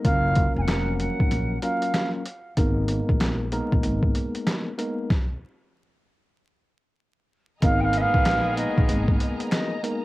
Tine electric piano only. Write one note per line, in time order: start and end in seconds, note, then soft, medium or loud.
0.04 0.64 F#3 medium
0.04 0.64 A#3 medium
0.04 0.64 C#4 medium
0.04 0.64 F4 medium
0.04 0.64 A#4 loud
0.67 1.57 F3 medium
0.67 1.56 F#3 medium
0.67 1.56 A#3 medium
0.67 1.56 C#4 medium
0.67 1.57 A#4 loud
1.62 2.22 F#3 medium
1.62 2.22 A#3 medium
1.62 2.22 C#4 medium
1.62 2.22 F4 medium
1.62 2.22 A#4 loud
2.58 3.46 G#3 medium
2.58 3.46 A#3 medium
2.58 3.47 B3 medium
2.58 3.47 D#4 medium
2.58 3.47 A#4 loud
3.52 4.71 G#3 loud
3.52 4.71 A#3 medium
3.52 4.71 B3 medium
3.52 4.71 D#4 medium
3.52 4.71 A#4 loud
4.78 5.08 G#3 medium
4.78 5.08 A#3 medium
4.78 5.08 B3 medium
4.78 5.08 D#4 medium
4.78 5.08 A#4 medium
7.63 8.52 G#3 loud
7.63 8.52 A#3 medium
7.63 8.52 B3 medium
7.63 8.52 D#4 medium
7.63 8.52 A#4 loud
8.57 9.76 G#3 medium
8.57 9.76 A#3 medium
8.57 9.76 B3 medium
8.57 9.76 D#4 medium
8.57 9.76 A#4 loud
9.83 10.05 G#3 medium
9.83 10.05 A#3 medium
9.83 10.05 B3 medium
9.83 10.05 D#4 medium
9.83 10.05 A#4 medium